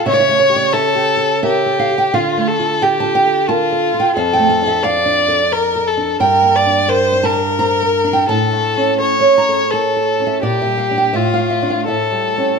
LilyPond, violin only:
\new Staff \with { instrumentName = "Violin" } { \time 3/4 \key d \minor \tempo 4 = 86 cis''4 a'4 g'4 | f'8 a'8 g'4 f'4 | a'4 d''4 bes'8 a'8 | bes'8 d''8 c''8 bes'4. |
a'4 cis''4 a'4 | g'4 f'4 a'4 | }